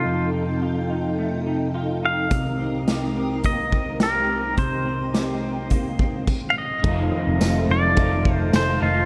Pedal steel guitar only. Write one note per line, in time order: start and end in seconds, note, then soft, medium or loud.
0.00 0.29 F4 medium
2.05 3.45 F5 loud
3.46 3.98 D#5 medium
4.03 4.55 A#4 medium
4.59 6.24 C5 medium
6.50 6.56 F5 medium
6.58 7.71 D#5 medium
7.71 8.33 D5 loud
8.33 8.56 C5 loud
8.56 8.84 C5 medium
8.83 9.05 F4 medium